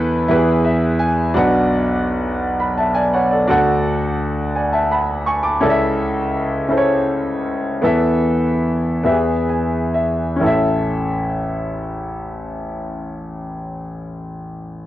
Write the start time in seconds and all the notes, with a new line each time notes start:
Already playing: E2 E3 E4 A4 B4
0.28 E2 E3 E4 G4 B4
0.36 G#4
0.65 E5
0.99 G#5
1.34 B1 B2 D4 F#4 B4 F#5
2.60 F#5 B5
2.78 E5 A5
2.94 D5 G#5
3.14 C#5 F#5
3.31 A4 D5
3.47 D2 D3 D4 F#4 A4 F#5
4.56 D5 G#5
4.73 E5 A5
4.91 F#5 B5
5.26 G#5 C#6
5.43 A5 D6
5.61 C#2 C#3 C#4 E4 A4 D5
5.70 E5
6.68 C#4 E4 A4 C5
6.77 C#5
7.82 E2 E3 B3 E4 A4 E5
9.03 E2 E3 B3 E4 G4 E5
9.12 G#4
9.49 G#5
9.94 E5
10.36 C#4 E4
10.41 A1 A4
10.46 E5